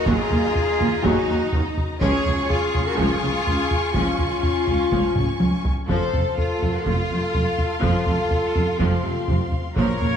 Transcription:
0.00 1.96 D#4 medium
0.00 1.96 D#5 medium
0.00 1.96 A#5 medium
0.06 0.15 D#2 loud
0.06 0.16 D#2 medium
0.06 0.29 F#3 medium
0.06 1.03 F4 loud
0.06 1.03 G#4 loud
0.06 taiko loud
0.31 0.39 D#2 medium
0.31 0.41 D#2 medium
0.31 0.40 D#3 medium
0.31 taiko low-mid medium
0.55 taiko low-mid medium
0.79 0.88 D#2 medium
0.79 0.89 D#2 medium
0.79 0.87 D#3 medium
0.79 taiko low-mid medium
1.03 1.11 D#2 loud
1.03 1.13 D#2 loud
1.03 1.26 F#3 loud
1.03 1.77 D#4 loud
1.03 1.76 F#4 loud
1.03 taiko medium
1.28 1.36 D#2 medium
1.28 1.38 D#2 medium
1.28 1.36 D#3 medium
1.53 1.61 D#2 medium
1.53 1.62 D#2 medium
1.53 1.62 D#3 medium
1.53 taiko low-mid medium
1.78 taiko low-mid medium
2.00 2.09 C#2 loud
2.00 2.11 C#2 loud
2.00 2.23 F3 loud
2.00 5.65 F4 loud
2.00 2.46 G#4 loud
2.00 2.45 C#5 loud
2.00 5.65 G#5 medium
2.00 5.65 C#6 medium
2.00 taiko loud
2.25 2.34 C#2 medium
2.25 2.35 C#2 medium
2.25 2.33 C#3 medium
2.25 taiko low-mid medium
2.49 2.85 F4 loud
2.49 2.85 G#4 loud
2.49 taiko low-mid medium
2.74 2.82 C#2 medium
2.74 2.83 C#2 medium
2.74 2.83 C#3 medium
2.74 taiko low-mid medium
2.85 2.97 F#4 medium
2.85 2.99 A#4 loud
2.98 3.06 C#2 medium
2.98 3.07 C#2 loud
2.98 3.20 F3 loud
2.98 3.93 F4 loud
2.98 3.95 G#4 loud
2.98 taiko medium
3.23 3.31 C#2 medium
3.23 3.31 C#3 medium
3.46 3.55 C#2 medium
3.46 3.56 C#2 medium
3.46 3.54 C#3 medium
3.46 taiko low-mid medium
3.71 taiko low-mid medium
3.93 4.03 C#2 medium
3.93 4.04 C#2 medium
3.93 4.16 F3 medium
3.93 5.61 C#4 medium
3.93 5.65 F4 loud
3.93 taiko medium
4.18 4.27 C#2 medium
4.18 4.29 C#2 medium
4.18 4.26 C#3 medium
4.18 taiko low-mid medium
4.43 taiko low-mid medium
4.66 4.75 C#2 medium
4.66 4.77 C#2 medium
4.66 4.74 C#3 medium
4.66 taiko low-mid medium
4.91 4.99 C#2 medium
4.91 5.01 C#2 medium
4.91 5.14 F3 medium
4.91 taiko medium
5.15 5.24 C#2 medium
5.15 5.25 C#2 soft
5.15 5.23 C#3 medium
5.15 taiko mid medium
5.39 5.48 C#2 soft
5.39 5.49 C#2 medium
5.39 5.47 C#3 soft
5.39 taiko high medium
5.65 taiko low medium
5.87 5.98 F1 medium
5.87 5.97 F2 medium
5.87 6.11 F3 medium
5.87 9.73 F4 medium
5.87 6.33 A4 medium
5.87 6.33 C5 loud
5.87 9.73 F5 medium
5.87 9.73 C6 medium
5.87 taiko medium
6.12 6.21 F1 medium
6.12 6.22 F2 medium
6.12 6.20 C3 medium
6.12 taiko low-mid medium
6.37 6.74 F4 medium
6.37 6.74 A4 medium
6.37 taiko low-mid medium
6.60 6.71 F1 medium
6.60 6.70 F2 medium
6.60 6.68 C3 medium
6.60 taiko low-mid soft
6.73 6.86 F#4 medium
6.73 6.85 A#4 medium
6.84 6.95 F1 medium
6.84 6.95 F2 medium
6.84 7.08 F3 medium
6.84 7.80 F4 medium
6.84 7.81 A4 medium
6.84 taiko medium
7.09 7.19 F1 medium
7.09 7.19 F2 medium
7.09 7.17 C3 medium
7.34 7.43 F1 medium
7.34 7.43 F2 medium
7.34 7.42 C3 medium
7.34 taiko low-mid medium
7.59 taiko low-mid medium
7.81 7.92 F1 medium
7.81 7.90 F2 medium
7.81 8.05 F3 medium
7.81 8.77 F4 medium
7.81 8.78 A4 loud
7.81 taiko medium
8.06 8.17 F1 medium
8.06 8.16 F2 medium
8.06 8.14 C3 medium
8.06 taiko low-mid medium
8.31 taiko low-mid medium
8.54 8.64 F1 medium
8.54 8.64 F2 medium
8.54 8.62 C3 medium
8.54 taiko low-mid medium
8.79 8.89 F1 loud
8.79 8.87 F2 medium
8.79 9.03 F3 medium
8.79 9.53 C4 medium
8.79 9.53 F4 medium
8.79 taiko medium
9.04 9.13 F1 medium
9.04 9.12 F2 medium
9.04 9.12 C3 medium
9.28 9.38 F1 medium
9.28 9.36 F2 medium
9.28 9.36 C3 medium
9.28 taiko low-mid medium
9.52 taiko low-mid medium
9.76 9.86 A#1 medium
9.76 9.85 A#2 loud
9.76 9.83 A#2 soft
9.76 9.99 F3 medium
9.76 10.17 F4 medium
9.76 10.17 A#4 loud
9.76 10.17 C#5 loud
9.76 10.17 F5 medium
9.76 10.17 A#5 medium
9.76 taiko loud
9.84 9.91 A#2 soft
9.92 9.99 A#2 soft
10.00 10.11 A#1 medium
10.00 10.07 A#2 soft
10.00 10.09 A#2 medium
10.00 10.08 C#3 medium
10.00 taiko low-mid soft
10.08 10.14 A#2 soft

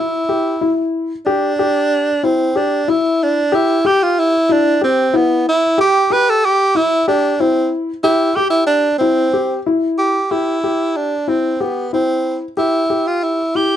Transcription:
0.00 0.21 E4 medium
0.00 0.89 E4 medium
0.29 0.54 G4 medium
0.61 1.10 E4 medium
1.26 2.26 D4 medium
1.26 1.51 G4 medium
1.59 2.08 G4 medium
2.23 2.58 C4 medium
2.23 2.48 E4 medium
2.56 2.91 D4 medium
2.56 2.80 G4 medium
2.88 3.37 E4 medium
2.88 3.24 E4 medium
3.23 3.56 D4 medium
3.52 3.88 E4 medium
3.52 3.77 G4 medium
3.85 4.34 G4 medium
3.85 4.04 G4 medium
4.03 4.21 F4 medium
4.19 4.53 E4 medium
4.49 4.83 D4 medium
4.49 4.74 E4 medium
4.81 5.18 C4 medium
4.81 5.06 G4 medium
5.13 5.47 B3 medium
5.13 5.63 E4 medium
5.49 5.77 E4 medium
5.78 6.03 G4 medium
5.78 6.14 G4 loud
6.10 6.60 G4 medium
6.10 6.31 B4 medium
6.29 6.47 A4 loud
6.45 6.78 G4 loud
6.75 7.00 E4 medium
6.75 7.07 E4 medium
7.08 7.42 D4 medium
7.08 7.32 G4 medium
7.40 7.73 C4 medium
7.40 7.89 E4 medium
8.03 8.37 E4 medium
8.03 8.29 G4 medium
8.35 8.50 G4 loud
8.35 8.86 G4 medium
8.50 8.66 E4 medium
8.67 8.98 D4 loud
8.99 9.61 C4 medium
8.99 9.26 E4 medium
9.34 9.58 G4 medium
9.66 10.16 E4 medium
9.98 10.33 G4 medium
10.31 10.98 E4 medium
10.31 10.56 G4 medium
10.64 11.13 G4 medium
10.96 11.30 D4 medium
11.28 11.63 C4 medium
11.28 11.52 E4 medium
11.60 11.93 B3 medium
11.60 11.85 G4 medium
11.93 12.39 C4 medium
11.93 12.42 E4 medium
12.57 13.09 E4 medium
12.57 12.82 G4 medium
12.90 13.39 G4 medium
13.07 13.25 F4 medium
13.23 13.57 E4 medium
13.55 13.77 E4 medium
13.55 13.77 G4 medium

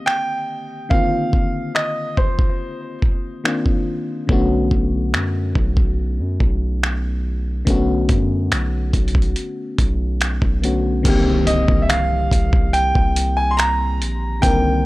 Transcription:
0.00 0.88 D3 medium
0.00 0.86 D#3 medium
0.00 0.87 A#3 medium
0.00 0.87 C4 medium
0.00 0.92 G4 medium
0.06 0.93 G5 medium
0.06 finger snap loud
0.89 3.42 D3 medium
0.89 3.40 D#3 medium
0.89 3.40 A#3 medium
0.89 3.41 C4 medium
0.89 1.71 F5 medium
0.89 kick loud
0.94 3.42 F4 medium
1.33 kick medium
1.75 2.19 D#5 medium
1.75 finger snap loud
2.17 2.98 C5 medium
2.17 kick medium
2.39 kick medium
3.02 kick medium
3.44 4.29 D#3 medium
3.44 4.29 A#3 medium
3.44 4.29 C4 medium
3.44 4.30 D4 medium
3.44 4.30 F4 medium
3.44 finger snap loud
3.66 kick medium
4.27 4.70 B1 loud
4.27 4.35 C#3 medium
4.27 7.63 A3 medium
4.27 7.63 B3 medium
4.27 kick loud
4.31 7.64 D3 medium
4.31 7.64 C#4 medium
4.31 7.65 F#4 medium
4.71 5.15 B1 loud
4.71 kick medium
5.14 5.54 F#2 loud
5.14 finger snap loud
5.55 6.21 B1 loud
5.55 kick medium
5.77 kick medium
6.19 6.39 F#2 loud
6.40 7.63 B1 loud
6.40 kick medium
6.83 finger snap loud
7.65 8.08 B1 loud
7.65 10.58 D3 medium
7.65 10.59 A3 medium
7.65 10.59 B3 medium
7.65 10.60 C#4 medium
7.65 kick loud
7.65 closed hi-hat medium
7.70 10.61 F#4 medium
8.09 8.50 F#2 medium
8.09 kick medium
8.09 closed hi-hat medium
8.52 8.92 B1 medium
8.52 finger snap loud
8.52 closed hi-hat medium
8.93 9.34 B1 loud
8.93 kick medium
8.93 closed hi-hat medium
9.08 closed hi-hat soft
9.15 kick medium
9.22 closed hi-hat soft
9.36 closed hi-hat medium
9.78 10.39 B1 loud
9.78 kick medium
9.78 closed hi-hat medium
10.21 finger snap loud
10.21 closed hi-hat medium
10.42 11.03 B1 loud
10.42 kick medium
10.62 11.05 D3 medium
10.62 11.05 A3 soft
10.62 11.05 B3 medium
10.62 11.06 C#4 medium
10.62 11.06 F#4 medium
10.62 closed hi-hat medium
11.03 11.66 C2 loud
11.03 14.40 D3 medium
11.03 14.38 D#3 medium
11.03 14.39 A#3 medium
11.03 14.39 C4 medium
11.03 kick loud
11.03 closed hi-hat medium
11.03 crash medium
11.03 impact medium
11.08 14.41 G4 medium
11.47 11.80 D#5 medium
11.47 closed hi-hat medium
11.68 12.29 C2 loud
11.68 kick loud
11.82 11.89 E5 medium
11.89 12.77 F5 medium
11.89 finger snap loud
11.89 closed hi-hat medium
12.31 12.93 C2 loud
12.31 kick medium
12.31 closed hi-hat medium
12.53 kick loud
12.73 13.39 G5 loud
12.73 closed hi-hat medium
12.95 14.02 C2 loud
12.95 kick medium
13.16 closed hi-hat medium
13.37 13.52 G#5 medium
13.51 13.58 C6 medium
13.57 14.45 A#5 loud
13.57 finger snap loud
13.57 closed hi-hat medium
14.01 14.41 A#1 medium
14.01 closed hi-hat medium
14.41 14.86 C2 loud
14.41 14.86 D3 medium
14.41 14.86 D#3 medium
14.41 14.86 A#3 medium
14.41 14.86 C4 medium
14.41 14.86 G5 medium
14.41 kick loud
14.41 closed hi-hat medium
14.46 14.86 A#4 medium

